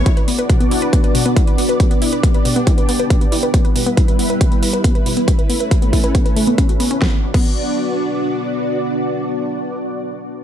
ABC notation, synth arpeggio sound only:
X:1
M:4/4
L:1/16
Q:1/4=138
K:Bm
V:1 name="Synth arpeggio sound"
E B B, B B,, B, E B B, B B,, B, E B B, B | B,, B, E B B, B B,, B, E B B, B B,, B, E B | B, B B,, B, E B B, B B,, B, E B B, B B,, B, | E B B, B B,, B, E B B, B A, B, C F B, C |
B, z2 B, z12 | z16 |]